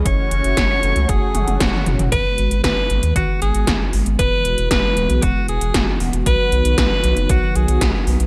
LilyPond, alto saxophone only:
\new Staff \with { instrumentName = "Alto saxophone" } { \time 4/4 \key gis \phrygian \tempo 4 = 116 cis''2 gis'4 fis'8. r16 | b'4 b'4 fis'8 gis'4 r8 | b'4 b'4 fis'8 gis'4 r8 | b'4 b'4 fis'8 gis'4 r8 | }